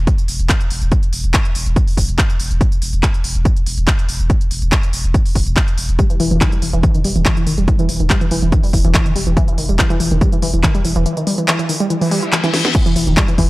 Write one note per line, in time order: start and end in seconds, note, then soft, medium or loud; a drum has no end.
0.07 kick loud
0.07 closed hi-hat medium
0.18 closed hi-hat medium
0.28 0.39 E1 medium
0.28 open hi-hat loud
0.39 0.49 E1 medium
0.39 closed hi-hat medium
0.49 kick loud
0.49 clap loud
0.49 closed hi-hat medium
0.60 closed hi-hat medium
0.70 0.81 E1 loud
0.70 open hi-hat loud
0.82 0.92 E1 medium
0.82 closed hi-hat medium
0.92 kick loud
0.92 closed hi-hat medium
1.03 closed hi-hat medium
1.13 1.23 E1 loud
1.13 open hi-hat loud
1.24 1.34 E1 medium
1.24 closed hi-hat medium
1.34 kick loud
1.34 clap loud
1.34 closed hi-hat medium
1.45 closed hi-hat medium
1.55 1.66 E1 loud
1.55 open hi-hat loud
1.66 1.76 E1 medium
1.66 closed hi-hat medium
1.76 kick loud
1.76 closed hi-hat medium
1.87 open hi-hat medium
1.97 2.08 E1 loud
1.97 kick medium
1.97 open hi-hat loud
2.09 2.18 E1 medium
2.09 closed hi-hat medium
2.18 kick loud
2.18 clap loud
2.18 closed hi-hat medium
2.30 closed hi-hat medium
2.40 2.50 E1 loud
2.40 open hi-hat loud
2.51 2.61 E1 medium
2.51 closed hi-hat medium
2.61 kick loud
2.61 closed hi-hat medium
2.72 closed hi-hat medium
2.82 2.93 E1 loud
2.82 open hi-hat loud
2.93 3.03 E1 medium
2.93 closed hi-hat medium
3.03 kick loud
3.03 clap loud
3.03 closed hi-hat medium
3.14 closed hi-hat medium
3.24 3.35 E1 loud
3.24 open hi-hat loud
3.35 3.45 E1 medium
3.35 closed hi-hat medium
3.45 kick loud
3.45 closed hi-hat medium
3.56 closed hi-hat medium
3.66 3.77 E1 loud
3.66 open hi-hat loud
3.78 3.87 E1 medium
3.78 closed hi-hat medium
3.87 kick loud
3.87 clap loud
3.87 closed hi-hat medium
3.99 closed hi-hat medium
4.09 4.19 E1 loud
4.09 open hi-hat loud
4.20 4.30 E1 medium
4.20 closed hi-hat medium
4.30 kick loud
4.30 closed hi-hat medium
4.41 closed hi-hat medium
4.51 4.61 E1 loud
4.51 open hi-hat loud
4.62 4.72 E1 medium
4.62 closed hi-hat medium
4.72 kick loud
4.72 clap loud
4.72 closed hi-hat medium
4.83 closed hi-hat soft
4.93 5.04 E1 loud
4.93 open hi-hat loud
5.04 5.14 E1 medium
5.04 closed hi-hat medium
5.14 kick loud
5.14 closed hi-hat medium
5.26 open hi-hat medium
5.35 5.46 E1 medium
5.35 kick medium
5.35 open hi-hat loud
5.47 5.56 E1 medium
5.47 closed hi-hat medium
5.57 kick loud
5.57 clap loud
5.57 closed hi-hat medium
5.68 closed hi-hat medium
5.78 5.88 E1 loud
5.78 open hi-hat loud
5.89 5.99 E1 medium
5.89 closed hi-hat medium
5.99 6.05 G3 medium
5.99 kick loud
5.99 closed hi-hat medium
6.10 6.13 E3 medium
6.10 closed hi-hat medium
6.20 6.31 E1 loud
6.20 6.30 E3 loud
6.20 open hi-hat loud
6.31 6.41 E1 medium
6.31 6.40 E3 medium
6.31 closed hi-hat soft
6.41 6.48 D#3 medium
6.41 kick loud
6.41 clap loud
6.41 closed hi-hat medium
6.52 6.58 G3 medium
6.52 closed hi-hat soft
6.62 6.73 E1 loud
6.62 6.66 E3 medium
6.62 open hi-hat loud
6.73 6.83 E1 medium
6.73 6.82 E3 loud
6.73 closed hi-hat soft
6.83 6.93 E3 medium
6.83 kick loud
6.83 closed hi-hat medium
6.94 7.00 D#3 medium
6.94 closed hi-hat medium
7.04 7.15 E1 medium
7.04 7.11 G3 medium
7.04 open hi-hat loud
7.16 7.25 E1 medium
7.16 7.19 E3 medium
7.16 closed hi-hat medium
7.26 7.35 E3 loud
7.26 kick loud
7.26 clap loud
7.26 closed hi-hat medium
7.37 7.45 E3 medium
7.37 closed hi-hat soft
7.47 7.57 E1 loud
7.47 7.53 D#3 medium
7.47 open hi-hat loud
7.58 7.68 E1 medium
7.58 7.64 G3 medium
7.58 closed hi-hat medium
7.68 7.72 E3 medium
7.68 kick loud
7.68 closed hi-hat medium
7.79 7.88 E3 loud
7.79 closed hi-hat medium
7.89 8.00 E1 loud
7.89 open hi-hat loud
8.00 8.10 E1 medium
8.00 8.06 D#3 medium
8.00 closed hi-hat soft
8.10 8.17 G3 medium
8.10 kick loud
8.10 clap loud
8.10 closed hi-hat medium
8.21 8.25 E3 medium
8.21 closed hi-hat soft
8.31 8.42 E1 loud
8.31 8.41 E3 loud
8.31 open hi-hat loud
8.42 8.52 E1 medium
8.42 8.51 E3 medium
8.42 closed hi-hat soft
8.52 8.59 D#3 medium
8.52 kick loud
8.52 closed hi-hat medium
8.63 8.69 G3 medium
8.63 open hi-hat medium
8.73 8.84 E1 loud
8.73 8.77 E3 medium
8.73 kick medium
8.73 open hi-hat loud
8.85 8.94 E1 medium
8.85 8.93 E3 loud
8.85 closed hi-hat medium
8.94 9.04 E3 medium
8.94 kick loud
8.94 clap loud
8.94 closed hi-hat medium
9.06 9.11 D#3 medium
9.06 closed hi-hat medium
9.16 9.26 E1 loud
9.16 9.22 G3 medium
9.16 open hi-hat loud
9.27 9.37 E1 medium
9.27 9.30 E3 medium
9.27 closed hi-hat soft
9.37 9.46 E3 loud
9.37 kick loud
9.37 closed hi-hat medium
9.48 9.57 E3 medium
9.48 closed hi-hat medium
9.58 9.68 E1 loud
9.58 9.64 D#3 medium
9.58 open hi-hat loud
9.69 9.79 E1 medium
9.69 9.75 G3 medium
9.69 closed hi-hat soft
9.79 9.83 E3 medium
9.79 kick loud
9.79 clap loud
9.79 closed hi-hat medium
9.90 9.99 E3 loud
9.90 closed hi-hat medium
10.00 10.11 E1 loud
10.00 10.10 E3 medium
10.00 open hi-hat loud
10.11 10.21 E1 medium
10.11 10.17 D#3 medium
10.11 closed hi-hat medium
10.21 10.28 G3 medium
10.21 kick loud
10.21 closed hi-hat medium
10.32 10.36 E3 medium
10.32 closed hi-hat medium
10.42 10.53 E1 loud
10.42 10.52 E3 loud
10.42 open hi-hat loud
10.54 10.63 E1 medium
10.54 10.62 E3 medium
10.54 closed hi-hat medium
10.63 10.70 D#3 medium
10.63 kick loud
10.63 clap loud
10.63 closed hi-hat medium
10.75 10.80 G3 medium
10.75 closed hi-hat medium
10.85 10.95 E1 loud
10.85 10.89 E3 medium
10.85 open hi-hat loud
10.96 11.06 E1 medium
10.96 11.05 E3 loud
10.96 closed hi-hat medium
11.06 11.16 E3 medium
11.06 closed hi-hat medium
11.17 11.23 D#3 medium
11.17 closed hi-hat medium
11.27 11.33 G3 medium
11.27 open hi-hat loud
11.38 11.42 E3 medium
11.38 closed hi-hat medium
11.48 11.58 E3 loud
11.48 clap loud
11.48 closed hi-hat medium
11.59 11.68 E3 medium
11.59 closed hi-hat medium
11.69 11.76 D#3 medium
11.69 open hi-hat loud
11.80 11.86 G3 medium
11.80 closed hi-hat medium
11.90 11.94 E3 medium
11.90 closed hi-hat medium
11.90 reverse cymbal medium
12.01 12.10 E3 loud
12.01 open hi-hat medium
12.11 12.18 G3 loud
12.11 open hi-hat loud
12.23 12.31 E4 medium
12.23 closed hi-hat medium
12.32 12.39 E3 medium
12.32 clap loud
12.32 closed hi-hat medium
12.44 12.49 E3 loud
12.44 snare medium
12.44 closed hi-hat medium
12.54 12.60 E3 medium
12.54 snare medium
12.54 open hi-hat loud
12.65 12.71 B3 medium
12.65 snare medium
12.65 closed hi-hat medium
12.75 12.79 E3 medium
12.75 13.50 E3 medium
12.75 13.50 E4 medium
12.75 kick loud
12.75 closed hi-hat medium
12.75 crash loud
12.86 12.95 E3 loud
12.86 closed hi-hat medium
12.96 13.07 E1 loud
12.96 13.06 E3 medium
12.96 open hi-hat loud
13.07 13.17 E1 medium
13.07 13.13 D#3 medium
13.07 closed hi-hat medium
13.17 13.24 G3 medium
13.17 kick loud
13.17 clap loud
13.17 closed hi-hat medium
13.28 13.32 E3 medium
13.28 closed hi-hat medium
13.38 13.49 E1 loud
13.38 13.48 E3 loud
13.38 kick medium
13.38 open hi-hat medium